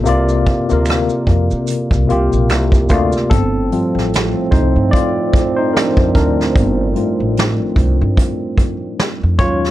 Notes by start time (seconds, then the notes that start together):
Already playing: C3 A#3 E4 F4 A4 F5
0.04 C2 C3 A#3 F4, closed hi-hat, maracas
0.09 D5
0.29 maracas
0.46 kick, closed hi-hat
0.68 D2 C3 A#3 F4, closed hi-hat, maracas
0.73 A#4
0.86 finger snap, closed hi-hat, maracas
0.90 cross-stick
1.09 maracas
1.27 F2, kick, closed hi-hat
1.51 C3, maracas
1.68 closed hi-hat, maracas
1.91 C2, kick, maracas
2.07 C2 C3 A#3 F4, closed hi-hat
2.12 G4
2.33 A#1, maracas
2.50 C2, finger snap, cross-stick, closed hi-hat, maracas
2.72 kick, maracas
2.89 D2 C3 A3 A#3 F4, kick, closed hi-hat, maracas
2.93 D5
3.12 maracas
3.16 cross-stick
3.30 G1 A2 F3 C4 A4, kick, closed hi-hat
3.72 F3 G3 C4 F4, closed hi-hat
3.95 A1, snare
4.14 snare, closed hi-hat
4.51 C2 D#4 C5, kick, closed hi-hat
4.76 G2
4.91 F4 D5, kick
4.96 closed hi-hat
5.33 kick, closed hi-hat
5.56 D#4 C5
5.73 D4 A#4, snare
5.77 closed hi-hat
5.97 F2, kick
6.15 D2 D4 A#4, kick, closed hi-hat
6.41 snare
6.56 G1, kick, closed hi-hat
6.96 G3 A3 C4 F4, closed hi-hat
7.20 A1
7.37 snare, closed hi-hat
7.76 C2, kick, closed hi-hat
8.01 G2
8.17 kick, closed hi-hat
8.58 kick, closed hi-hat
8.99 snare, closed hi-hat
9.23 F2
9.39 D#2 A#2 F#3 G#3 C#4 F4 C#5, kick, closed hi-hat
9.65 snare